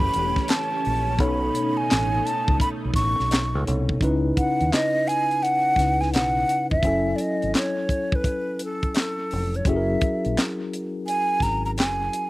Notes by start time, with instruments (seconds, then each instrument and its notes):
Already playing: tine electric piano E3 E4 G4 B4 C#5, string machine A3 C#4 G4, flute B5
0.00 kick
0.14 fingered electric bass E1, closed hi-hat
0.36 kick, snare
0.48 flute A5, snare, clap, closed hi-hat
0.85 fingered electric bass A#1, open hi-hat
1.18 fingered electric bass B1, tine electric piano B2 B3 D#4 A4 C#5, string machine A3 D#4, flute B5, kick, closed hi-hat
1.55 closed hi-hat
1.77 flute G#5
1.91 fingered electric bass A1, snare, clap, closed hi-hat
2.26 flute A5, closed hi-hat
2.48 fingered electric bass C#2, kick
2.60 flute B5, kick, closed hi-hat
2.85 fingered electric bass B1
2.94 fingered electric bass A1, flute C#6, kick, snare, closed hi-hat
3.20 fingered electric bass B1, snare
3.31 snare, clap, closed hi-hat
3.55 fingered electric bass C#2
3.66 fingered electric bass C2, tine electric piano B2 B3 D#4 A4 C#5, closed hi-hat
3.89 kick
4.00 fingered electric bass C#2, tine electric piano C#3 C#4 D#4 E4 B4, kick, closed hi-hat
4.37 flute F#5, kick, closed hi-hat
4.61 fingered electric bass D#2, closed hi-hat
4.73 flute D#5, snare, clap, closed hi-hat
5.08 flute G#5, closed hi-hat
5.31 closed hi-hat
5.43 flute F#5, closed hi-hat
5.76 fingered electric bass C#2, tine electric piano C#3 C#4 D#4 E4 B4, kick, closed hi-hat
5.80 snare
6.01 flute G#5, snare, closed hi-hat
6.13 fingered electric bass B1, flute F#5, snare, clap, closed hi-hat
6.49 closed hi-hat
6.71 fingered electric bass F1, flute E5, kick
6.83 fingered electric bass F#1, tine electric piano F#3 C#4 E4 G#5, kick, closed hi-hat
6.87 tine electric piano A4
7.16 flute D5, closed hi-hat
7.21 flute D#5
7.42 fingered electric bass G#1, closed hi-hat
7.55 flute C#5, snare, clap, closed hi-hat
7.89 kick, closed hi-hat
8.12 flute B4, kick
8.24 kick, closed hi-hat
8.59 closed hi-hat
8.65 flute A4
8.83 kick, closed hi-hat
8.95 flute A4, snare, clap, closed hi-hat
9.31 fingered electric bass F1, open hi-hat
9.54 flute C#5, closed hi-hat
9.65 fingered electric bass F#1, tine electric piano F#3 C#4 E4 F#4 G#4, flute E5, kick, closed hi-hat
9.70 tine electric piano A4
9.76 tine electric piano A#4
10.01 kick, closed hi-hat
10.25 fingered electric bass A#1, closed hi-hat
10.38 snare, clap, closed hi-hat
10.73 closed hi-hat
11.07 flute G#5, closed hi-hat
11.40 fingered electric bass G#1, flute A#5, kick, snare, closed hi-hat
11.65 flute A#5, closed hi-hat
11.78 fingered electric bass F#1, flute G#5, snare, clap, closed hi-hat
12.13 closed hi-hat